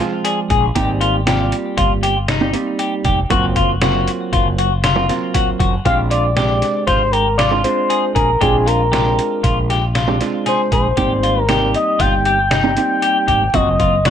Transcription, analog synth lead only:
5.86 5.97 F5 loud
6.11 6.35 D5 medium
6.36 6.84 D5 medium
6.87 7.13 C5 medium
7.12 7.37 A#4 medium
7.38 7.50 D5 medium
7.64 8.12 C5 medium
8.15 8.43 A#4 medium
8.41 8.68 G#4 medium
8.67 9.70 A#4 medium
10.48 10.71 C5 medium
10.73 11.42 C5 medium
11.42 11.71 A#4 medium
11.75 12.02 D#5 medium
12.00 12.25 G5 loud
12.26 12.50 G5 loud
12.51 13.56 G5 loud
13.54 14.07 D#5 medium
14.06 14.10 D5 medium

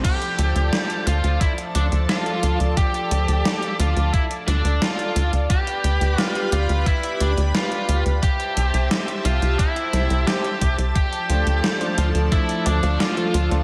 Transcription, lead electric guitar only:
0.05 1.07 G4 loud
1.07 1.41 F4 medium
1.41 1.50 E4 medium
1.75 1.85 D4 medium
2.10 2.57 F4 medium
2.77 3.76 G4 loud
3.80 4.13 F4 medium
4.14 4.23 E4 medium
4.48 4.83 D4 medium
4.82 5.30 F4 medium
5.51 6.20 G4 loud
6.20 6.49 F4 loud
6.53 6.87 F4 medium
6.87 7.18 E4 medium
7.21 7.30 D4 medium
7.55 8.02 F4 medium
8.23 8.87 G4 medium
9.25 9.57 F4 medium
9.59 10.27 E4 medium
10.27 10.75 G4 medium
10.96 12.01 G4 medium
11.98 12.07 F4 medium
12.32 12.66 E4 medium
12.66 12.98 D4 medium
13.00 13.48 F4 medium

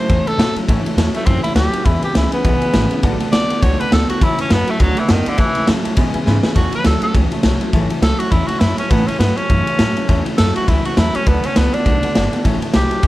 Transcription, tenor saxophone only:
0.00 0.29 C5 loud
0.27 0.55 A4 loud
1.15 1.27 A3 loud
1.26 1.42 C4 loud
1.43 1.55 E4 loud
1.55 1.87 G4 loud
1.85 2.02 E4 loud
2.04 2.15 G4 loud
2.17 2.33 E4 loud
2.33 3.18 B3 loud
3.32 3.64 D5 loud
3.62 3.81 C#5 loud
3.80 3.91 B4 loud
3.92 4.08 A4 loud
4.09 4.25 F#4 loud
4.23 4.39 E4 loud
4.41 4.54 C#4 loud
4.52 4.72 B3 loud
4.70 4.82 A3 loud
4.81 5.00 F#3 loud
4.99 5.12 E3 loud
5.11 5.30 D#3 loud
5.28 5.40 D3 loud
5.38 5.67 E3 loud
6.56 6.72 F#4 medium
6.75 6.85 B4 loud
6.86 7.02 A4 medium
7.03 7.14 A4 loud
8.03 8.20 A4 loud
8.19 8.33 F#4 medium
8.32 8.48 E4 medium
8.47 8.61 F#4 medium
8.59 8.77 E4 medium
8.78 8.92 C#4 medium
8.90 9.09 B3 loud
9.07 9.18 C#4 medium
9.19 9.38 B3 loud
9.37 10.23 C#4 loud
10.37 10.54 A4 loud
10.56 10.70 F#4 loud
10.68 10.85 E4 medium
10.85 11.00 F#4 loud
10.98 11.17 E4 loud
11.15 11.29 C#4 loud
11.27 11.47 B3 medium
11.46 11.59 C#4 loud
11.57 11.75 B3 loud
11.74 12.43 D4 loud
12.74 13.07 G4 loud

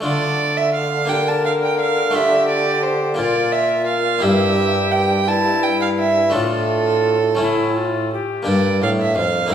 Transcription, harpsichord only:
0.01 1.05 A3 soft
0.01 1.06 D4 soft
0.01 1.07 F4 soft
0.05 3.15 D3 soft
1.05 2.09 A#3 soft
1.05 2.10 D4 soft
1.05 2.11 G4 soft
2.11 3.13 A3 soft
2.11 3.14 D4 soft
2.11 3.15 F4 soft
3.14 4.17 A#3 soft
3.14 4.18 F4 soft
3.19 4.19 A#2 soft
4.19 6.28 A#3 soft
4.19 6.29 E4 soft
4.19 6.29 G4 soft
4.23 6.30 G2 soft
6.30 7.34 A3 soft
6.30 7.36 D4 soft
6.30 7.37 F4 soft
6.34 7.37 A2 soft
7.35 8.41 A3 soft
7.35 8.42 C#4 soft
7.35 8.43 E4 soft
7.40 8.11 A2 soft
8.43 9.45 A#3 soft
8.43 9.48 D4 soft
8.43 9.49 G4 soft
8.47 8.79 G2 soft
8.82 9.14 A2 soft
9.16 9.48 F2 soft
9.47 9.55 G2 soft
9.47 9.55 A#3 soft
9.47 9.55 E4 soft
9.47 9.55 A#4 soft

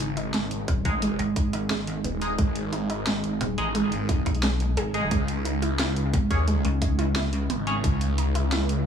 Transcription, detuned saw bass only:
0.00 0.50 G#1 loud
0.51 0.67 G#1 medium
0.85 1.18 A1 loud
2.04 2.37 D#1 loud
2.39 3.22 G#1 loud
3.24 3.39 G#1 medium
3.58 3.91 A1 medium
3.92 4.25 G#1 loud
5.11 5.95 C#2 loud
5.96 6.12 C#2 medium
6.31 6.63 D#2 medium
7.50 7.83 G#1 loud
7.84 8.68 C#2 loud
8.69 8.85 C#2 medium

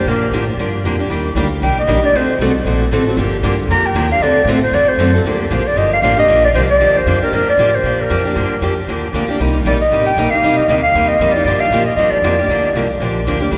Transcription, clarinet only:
0.08 0.33 A#4 medium
1.63 1.76 G5 loud
1.79 2.02 D#5 medium
2.05 2.18 D5 medium
2.16 2.41 C5 medium
3.71 3.88 A#5 loud
3.86 4.11 G5 medium
4.12 4.24 F5 loud
4.23 4.48 D5 medium
4.63 4.76 C5 medium
4.75 4.90 D5 loud
4.89 5.20 C5 loud
5.51 5.69 C5 medium
5.67 5.79 D5 medium
5.78 5.92 D#5 loud
5.93 6.02 F5 loud
6.03 6.17 F5 loud
6.19 6.43 D#5 loud
6.45 6.50 D5 medium
6.55 6.62 C5 medium
6.71 6.99 D5 loud
6.97 7.22 C5 medium
7.23 7.33 A#4 medium
7.34 7.47 A#4 loud
7.49 7.77 D5 loud
7.75 8.03 C5 medium
8.01 8.78 A#4 medium
9.67 9.73 D5 medium
9.81 10.05 D#5 medium
10.06 10.32 G5 loud
10.31 10.58 F5 loud
10.57 10.68 D#5 medium
10.68 10.75 D#5 medium
10.83 11.10 F5 loud
11.08 11.34 D#5 medium
11.33 11.44 D5 medium
11.45 11.62 D5 loud
11.60 11.85 F5 loud
11.85 11.95 D#5 medium
11.96 12.12 D#5 loud
12.10 12.89 D5 medium

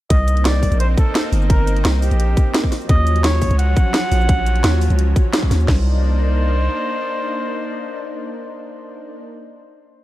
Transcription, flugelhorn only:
0.10 0.46 D#5 loud
0.45 0.79 D5 loud
0.80 0.88 C5 loud
0.97 1.30 A4 loud
1.50 1.82 A#4 loud
2.02 2.68 G4 loud
2.89 3.25 D#5 loud
3.24 3.58 C#5 loud
3.59 5.29 F#5 loud
5.68 9.23 C5 loud

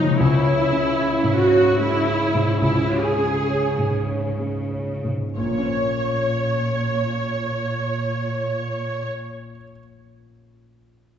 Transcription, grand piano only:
0.00 0.24 F3 soft
0.00 0.23 A#3 soft
0.00 0.23 C#4 soft
0.00 0.24 C#5 soft
0.20 2.57 C#2 medium
0.46 0.87 C#5 soft
0.72 1.14 C#4 soft
0.98 1.41 C#5 soft
1.24 1.67 G#2 soft
1.52 1.95 C#5 soft
1.79 2.23 G#3 soft
2.07 2.50 C#5 soft
2.35 2.78 G#2 soft
2.62 5.33 C#2 soft
2.89 3.35 C#5 soft
3.18 3.65 C#4 soft
3.48 3.96 C#5 soft
3.78 4.27 G#2 soft
4.08 4.58 C#5 soft
4.40 4.91 G#3 soft
4.71 5.24 C#5 soft
5.04 5.37 G#2 soft
5.37 9.50 A#1 soft
5.44 9.56 A#2 soft
5.51 9.64 A#3 soft
5.58 9.70 C#4 soft
5.65 9.77 C#5 soft

